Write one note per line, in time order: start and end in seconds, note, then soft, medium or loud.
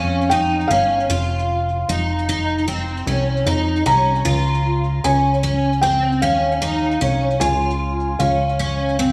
0.00 0.66 F2 medium
0.00 0.31 C#4 medium
0.00 0.34 F5 medium
0.30 0.70 D#4 medium
0.30 0.71 G5 loud
0.68 1.08 G1 medium
0.68 1.10 C#4 medium
0.68 2.23 F5 loud
1.09 1.85 F1 loud
1.09 1.89 F4 loud
1.89 3.03 F1 medium
1.89 2.28 D#4 medium
2.29 2.67 D#4 medium
2.68 3.07 C4 medium
3.07 3.44 C2 loud
3.07 3.46 C#4 medium
3.46 3.84 F2 medium
3.46 3.85 D#4 medium
3.86 4.23 C2 medium
3.86 4.25 C#4 medium
3.86 5.08 A#5 loud
4.25 5.00 C#2 loud
4.25 5.04 F4 medium
5.04 6.24 C#2 medium
5.04 5.42 C#4 medium
5.04 5.86 G#5 loud
5.43 5.82 C#4 medium
5.81 6.22 C4 medium
5.81 6.23 G5 loud
6.22 6.98 D#2 medium
6.22 6.61 C#4 medium
6.22 7.44 F5 medium
6.62 7.01 D#4 medium
7.01 7.39 C2 medium
7.01 7.41 C#4 medium
7.40 8.16 C#2 loud
7.40 8.20 F4 medium
7.40 8.22 G#5 loud
8.19 9.12 C#2 medium
8.19 8.58 C#4 medium
8.19 9.12 F5 medium
8.59 8.99 C#4 medium
8.99 9.12 C4 medium